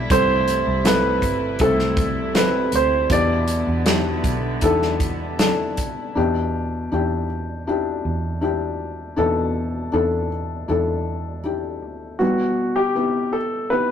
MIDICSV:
0, 0, Header, 1, 6, 480
1, 0, Start_track
1, 0, Key_signature, 1, "minor"
1, 0, Tempo, 750000
1, 63, Time_signature, 4, 2, 24, 8
1, 1983, Tempo, 764331
1, 4383, Tempo, 754717
1, 8831, End_track
2, 0, Start_track
2, 0, Title_t, "Grand piano"
2, 0, Program_c, 0, 0
2, 0, Note_on_c, 0, 74, 80
2, 73, Note_on_c, 0, 72, 90
2, 82, Note_off_c, 0, 74, 0
2, 556, Note_on_c, 0, 71, 81
2, 561, Note_off_c, 0, 72, 0
2, 1032, Note_on_c, 0, 69, 78
2, 1043, Note_off_c, 0, 71, 0
2, 1482, Note_off_c, 0, 69, 0
2, 1515, Note_on_c, 0, 71, 64
2, 1756, Note_off_c, 0, 71, 0
2, 1763, Note_on_c, 0, 72, 78
2, 1977, Note_off_c, 0, 72, 0
2, 1998, Note_on_c, 0, 74, 82
2, 3405, Note_off_c, 0, 74, 0
2, 7734, Note_on_c, 0, 66, 70
2, 8095, Note_on_c, 0, 67, 75
2, 8110, Note_off_c, 0, 66, 0
2, 8458, Note_on_c, 0, 69, 72
2, 8471, Note_off_c, 0, 67, 0
2, 8696, Note_on_c, 0, 71, 74
2, 8709, Note_off_c, 0, 69, 0
2, 8831, Note_off_c, 0, 71, 0
2, 8831, End_track
3, 0, Start_track
3, 0, Title_t, "Felt piano"
3, 0, Program_c, 1, 0
3, 0, Control_c, 1, 64, 127
3, 0, Note_on_c, 1, 62, 60
3, 0, Note_on_c, 1, 64, 53
3, 0, Note_on_c, 1, 67, 70
3, 0, Note_on_c, 1, 69, 76
3, 63, Note_on_c, 1, 60, 64
3, 65, Note_on_c, 1, 43, 55
3, 68, Note_off_c, 1, 64, 0
3, 68, Note_on_c, 1, 64, 60
3, 70, Control_c, 1, 64, 0
3, 71, Note_off_c, 1, 62, 0
3, 72, Note_off_c, 1, 69, 0
3, 72, Note_on_c, 1, 69, 69
3, 75, Note_off_c, 1, 67, 0
3, 195, Control_c, 1, 64, 127
3, 518, Note_off_c, 1, 60, 0
3, 521, Note_off_c, 1, 64, 0
3, 523, Note_off_c, 1, 69, 0
3, 539, Note_on_c, 1, 60, 72
3, 540, Note_on_c, 1, 64, 67
3, 547, Note_on_c, 1, 69, 82
3, 758, Note_off_c, 1, 43, 0
3, 996, Note_off_c, 1, 60, 0
3, 997, Note_off_c, 1, 64, 0
3, 1000, Note_off_c, 1, 69, 0
3, 1024, Note_on_c, 1, 60, 69
3, 1027, Note_on_c, 1, 64, 69
3, 1033, Note_on_c, 1, 69, 84
3, 1479, Note_off_c, 1, 60, 0
3, 1481, Note_off_c, 1, 64, 0
3, 1484, Note_off_c, 1, 69, 0
3, 1497, Note_on_c, 1, 60, 57
3, 1500, Note_on_c, 1, 64, 58
3, 1505, Note_on_c, 1, 69, 68
3, 1956, Note_off_c, 1, 60, 0
3, 1958, Note_off_c, 1, 64, 0
3, 1960, Note_off_c, 1, 69, 0
3, 1981, Note_on_c, 1, 62, 58
3, 1987, Note_on_c, 1, 47, 59
3, 1988, Note_on_c, 1, 64, 62
3, 1990, Note_on_c, 1, 67, 67
3, 1991, Control_c, 1, 64, 0
3, 2106, Control_c, 1, 64, 127
3, 2434, Note_off_c, 1, 62, 0
3, 2438, Note_off_c, 1, 64, 0
3, 2439, Note_off_c, 1, 67, 0
3, 2458, Note_on_c, 1, 62, 71
3, 2464, Note_on_c, 1, 64, 69
3, 2466, Note_on_c, 1, 67, 80
3, 2677, Note_off_c, 1, 47, 0
3, 2915, Note_off_c, 1, 62, 0
3, 2918, Note_off_c, 1, 64, 0
3, 2919, Note_off_c, 1, 67, 0
3, 2938, Note_on_c, 1, 62, 73
3, 2944, Note_on_c, 1, 64, 80
3, 2947, Note_on_c, 1, 69, 95
3, 3397, Note_off_c, 1, 62, 0
3, 3401, Note_off_c, 1, 64, 0
3, 3402, Note_off_c, 1, 69, 0
3, 3421, Note_on_c, 1, 62, 76
3, 3425, Note_on_c, 1, 64, 62
3, 3430, Note_on_c, 1, 69, 77
3, 3881, Note_off_c, 1, 62, 0
3, 3883, Note_off_c, 1, 64, 0
3, 3886, Note_off_c, 1, 69, 0
3, 3901, Note_on_c, 1, 62, 86
3, 3905, Note_on_c, 1, 64, 73
3, 3906, Note_on_c, 1, 47, 60
3, 3911, Note_on_c, 1, 67, 92
3, 3915, Control_c, 1, 64, 0
3, 4007, Control_c, 1, 64, 127
3, 4358, Note_off_c, 1, 62, 0
3, 4360, Note_off_c, 1, 64, 0
3, 4363, Note_off_c, 1, 67, 0
3, 4380, Note_on_c, 1, 62, 72
3, 4384, Note_on_c, 1, 64, 67
3, 4391, Note_on_c, 1, 67, 82
3, 4600, Note_off_c, 1, 47, 0
3, 4837, Note_off_c, 1, 62, 0
3, 4839, Note_off_c, 1, 64, 0
3, 4842, Note_off_c, 1, 67, 0
3, 4861, Note_on_c, 1, 62, 77
3, 4863, Note_on_c, 1, 64, 67
3, 4870, Note_on_c, 1, 67, 81
3, 5314, Note_off_c, 1, 62, 0
3, 5315, Note_off_c, 1, 64, 0
3, 5318, Note_off_c, 1, 67, 0
3, 5331, Note_on_c, 1, 62, 67
3, 5337, Note_on_c, 1, 64, 59
3, 5340, Note_on_c, 1, 67, 72
3, 5789, Note_off_c, 1, 62, 0
3, 5792, Note_off_c, 1, 64, 0
3, 5794, Note_off_c, 1, 67, 0
3, 5810, Note_on_c, 1, 62, 84
3, 5814, Note_on_c, 1, 47, 64
3, 5814, Note_on_c, 1, 64, 79
3, 5818, Note_on_c, 1, 69, 95
3, 6268, Note_off_c, 1, 62, 0
3, 6270, Note_off_c, 1, 64, 0
3, 6272, Note_off_c, 1, 69, 0
3, 6292, Note_on_c, 1, 62, 81
3, 6299, Note_on_c, 1, 64, 69
3, 6300, Note_on_c, 1, 69, 89
3, 6508, Note_off_c, 1, 47, 0
3, 6750, Note_off_c, 1, 62, 0
3, 6754, Note_off_c, 1, 64, 0
3, 6754, Note_off_c, 1, 69, 0
3, 6774, Note_on_c, 1, 62, 71
3, 6778, Note_on_c, 1, 64, 67
3, 6784, Note_on_c, 1, 69, 86
3, 7233, Note_off_c, 1, 62, 0
3, 7235, Note_off_c, 1, 64, 0
3, 7238, Note_off_c, 1, 69, 0
3, 7255, Note_on_c, 1, 62, 56
3, 7259, Note_on_c, 1, 64, 53
3, 7266, Note_on_c, 1, 67, 68
3, 7715, Note_off_c, 1, 62, 0
3, 7717, Note_off_c, 1, 64, 0
3, 7720, Note_off_c, 1, 67, 0
3, 7737, Note_on_c, 1, 59, 51
3, 7741, Note_on_c, 1, 47, 50
3, 7742, Note_on_c, 1, 64, 46
3, 7746, Note_on_c, 1, 55, 57
3, 7748, Control_c, 1, 64, 0
3, 7842, Control_c, 1, 64, 127
3, 8197, Note_off_c, 1, 59, 0
3, 8200, Note_off_c, 1, 64, 0
3, 8202, Note_off_c, 1, 55, 0
3, 8220, Note_on_c, 1, 59, 57
3, 8224, Note_on_c, 1, 64, 58
3, 8229, Note_on_c, 1, 67, 63
3, 8439, Note_off_c, 1, 47, 0
3, 8679, Note_off_c, 1, 59, 0
3, 8681, Note_off_c, 1, 64, 0
3, 8684, Note_off_c, 1, 67, 0
3, 8699, Note_on_c, 1, 59, 60
3, 8707, Note_on_c, 1, 64, 50
3, 8711, Note_on_c, 1, 67, 60
3, 8831, Note_off_c, 1, 59, 0
3, 8831, Note_off_c, 1, 64, 0
3, 8831, Note_off_c, 1, 67, 0
3, 8831, End_track
4, 0, Start_track
4, 0, Title_t, "String section"
4, 0, Program_c, 2, 48
4, 0, Note_on_c, 2, 55, 54
4, 0, Note_on_c, 2, 64, 62
4, 67, Note_on_c, 2, 57, 62
4, 69, Note_on_c, 2, 48, 64
4, 1966, Note_off_c, 2, 57, 0
4, 1967, Note_off_c, 2, 48, 0
4, 1978, Note_on_c, 2, 59, 66
4, 1982, Note_on_c, 2, 50, 72
4, 3878, Note_off_c, 2, 55, 0
4, 3878, Note_off_c, 2, 64, 0
4, 3884, Note_off_c, 2, 59, 0
4, 3886, Note_off_c, 2, 50, 0
4, 8831, End_track
5, 0, Start_track
5, 0, Title_t, "Fingered electric bass"
5, 0, Program_c, 3, 33
5, 66, Note_on_c, 3, 36, 81
5, 399, Note_off_c, 3, 36, 0
5, 427, Note_on_c, 3, 36, 85
5, 760, Note_off_c, 3, 36, 0
5, 782, Note_on_c, 3, 31, 75
5, 1005, Note_off_c, 3, 31, 0
5, 1024, Note_on_c, 3, 36, 92
5, 1718, Note_off_c, 3, 36, 0
5, 1746, Note_on_c, 3, 38, 78
5, 1968, Note_off_c, 3, 38, 0
5, 1984, Note_on_c, 3, 40, 92
5, 2315, Note_off_c, 3, 40, 0
5, 2344, Note_on_c, 3, 40, 81
5, 2677, Note_off_c, 3, 40, 0
5, 2700, Note_on_c, 3, 35, 68
5, 2923, Note_off_c, 3, 35, 0
5, 2943, Note_on_c, 3, 40, 95
5, 3666, Note_off_c, 3, 40, 0
5, 3666, Note_on_c, 3, 38, 89
5, 3890, Note_off_c, 3, 38, 0
5, 3910, Note_on_c, 3, 40, 83
5, 4361, Note_off_c, 3, 40, 0
5, 4385, Note_on_c, 3, 40, 74
5, 5075, Note_off_c, 3, 40, 0
5, 5102, Note_on_c, 3, 40, 89
5, 5792, Note_off_c, 3, 40, 0
5, 5819, Note_on_c, 3, 40, 81
5, 6271, Note_off_c, 3, 40, 0
5, 6299, Note_on_c, 3, 40, 84
5, 6752, Note_off_c, 3, 40, 0
5, 6779, Note_on_c, 3, 40, 82
5, 7499, Note_off_c, 3, 40, 0
5, 7499, Note_on_c, 3, 38, 65
5, 7723, Note_off_c, 3, 38, 0
5, 8831, End_track
6, 0, Start_track
6, 0, Title_t, "Drums"
6, 65, Note_on_c, 9, 36, 108
6, 66, Note_on_c, 9, 42, 93
6, 129, Note_off_c, 9, 36, 0
6, 130, Note_off_c, 9, 42, 0
6, 305, Note_on_c, 9, 42, 70
6, 369, Note_off_c, 9, 42, 0
6, 544, Note_on_c, 9, 42, 90
6, 548, Note_on_c, 9, 38, 109
6, 608, Note_off_c, 9, 42, 0
6, 612, Note_off_c, 9, 38, 0
6, 782, Note_on_c, 9, 36, 81
6, 786, Note_on_c, 9, 42, 59
6, 846, Note_off_c, 9, 36, 0
6, 850, Note_off_c, 9, 42, 0
6, 1017, Note_on_c, 9, 42, 70
6, 1023, Note_on_c, 9, 36, 84
6, 1081, Note_off_c, 9, 42, 0
6, 1087, Note_off_c, 9, 36, 0
6, 1146, Note_on_c, 9, 38, 35
6, 1210, Note_off_c, 9, 38, 0
6, 1260, Note_on_c, 9, 36, 106
6, 1262, Note_on_c, 9, 42, 62
6, 1324, Note_off_c, 9, 36, 0
6, 1326, Note_off_c, 9, 42, 0
6, 1504, Note_on_c, 9, 42, 84
6, 1505, Note_on_c, 9, 38, 101
6, 1568, Note_off_c, 9, 42, 0
6, 1569, Note_off_c, 9, 38, 0
6, 1741, Note_on_c, 9, 42, 64
6, 1805, Note_off_c, 9, 42, 0
6, 1983, Note_on_c, 9, 36, 100
6, 1983, Note_on_c, 9, 42, 82
6, 2046, Note_off_c, 9, 36, 0
6, 2046, Note_off_c, 9, 42, 0
6, 2220, Note_on_c, 9, 42, 67
6, 2283, Note_off_c, 9, 42, 0
6, 2460, Note_on_c, 9, 42, 88
6, 2463, Note_on_c, 9, 38, 116
6, 2523, Note_off_c, 9, 42, 0
6, 2526, Note_off_c, 9, 38, 0
6, 2699, Note_on_c, 9, 36, 88
6, 2702, Note_on_c, 9, 42, 66
6, 2762, Note_off_c, 9, 36, 0
6, 2765, Note_off_c, 9, 42, 0
6, 2934, Note_on_c, 9, 42, 68
6, 2940, Note_on_c, 9, 36, 82
6, 2997, Note_off_c, 9, 42, 0
6, 3003, Note_off_c, 9, 36, 0
6, 3065, Note_on_c, 9, 38, 35
6, 3127, Note_off_c, 9, 38, 0
6, 3177, Note_on_c, 9, 36, 88
6, 3179, Note_on_c, 9, 42, 68
6, 3240, Note_off_c, 9, 36, 0
6, 3241, Note_off_c, 9, 42, 0
6, 3423, Note_on_c, 9, 42, 77
6, 3425, Note_on_c, 9, 38, 99
6, 3486, Note_off_c, 9, 42, 0
6, 3487, Note_off_c, 9, 38, 0
6, 3663, Note_on_c, 9, 42, 62
6, 3667, Note_on_c, 9, 36, 68
6, 3726, Note_off_c, 9, 42, 0
6, 3730, Note_off_c, 9, 36, 0
6, 8831, End_track
0, 0, End_of_file